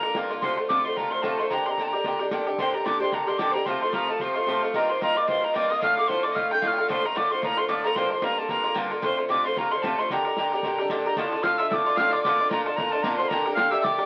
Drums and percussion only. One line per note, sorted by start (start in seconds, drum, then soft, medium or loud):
0.03 bodhran medium
0.15 bodhran medium
0.30 bodhran soft
0.42 bodhran medium
0.58 bodhran medium
0.70 bodhran medium
0.97 bodhran medium
1.12 bodhran medium
1.24 bodhran medium
1.39 bodhran soft
1.50 bodhran medium
1.66 bodhran medium
1.78 bodhran medium
1.93 bodhran medium
2.04 bodhran medium
2.19 bodhran medium
2.31 bodhran medium
2.47 bodhran soft
2.58 bodhran medium
2.86 bodhran medium
3.12 bodhran medium
3.28 bodhran medium
3.39 bodhran medium
3.55 bodhran soft
3.66 bodhran medium
3.81 bodhran medium
3.93 bodhran medium
4.19 bodhran medium
4.34 bodhran medium
4.47 bodhran medium
4.62 bodhran soft
4.74 bodhran medium
4.90 bodhran medium
5.02 bodhran medium
5.28 bodhran medium
5.44 bodhran medium
5.56 bodhran medium
5.70 bodhran soft
5.82 bodhran medium
5.97 bodhran medium
6.09 bodhran medium
6.24 bodhran soft
6.36 bodhran medium
6.51 bodhran medium
6.62 bodhran medium
6.78 bodhran medium
6.90 bodhran loud
7.06 bodhran medium
7.17 bodhran medium
7.43 bodhran medium
7.57 bodhran medium
7.69 bodhran medium
7.84 bodhran medium
7.96 bodhran medium
8.10 bodhran medium
8.22 bodhran medium
8.49 bodhran medium
8.64 bodhran medium
8.76 bodhran medium
8.91 bodhran soft
9.02 bodhran medium
9.19 bodhran medium
9.30 bodhran medium
9.57 bodhran medium
9.72 bodhran medium
9.84 bodhran medium
9.98 bodhran soft
10.10 bodhran medium
10.25 bodhran medium
10.37 bodhran medium
10.52 bodhran medium
10.63 bodhran medium
10.78 bodhran medium
10.89 bodhran medium
11.05 bodhran soft
11.16 bodhran medium
11.43 bodhran loud
11.59 bodhran medium
11.71 bodhran loud
11.97 bodhran medium
12.13 bodhran medium
12.25 bodhran medium
12.51 bodhran loud
12.66 bodhran medium
12.78 bodhran loud
12.85 bodhran soft
12.92 bodhran medium
13.04 bodhran medium
13.20 bodhran medium
13.31 bodhran loud
13.46 bodhran medium
13.57 bodhran medium
13.72 bodhran medium
13.84 bodhran loud
13.92 bodhran soft
13.99 bodhran medium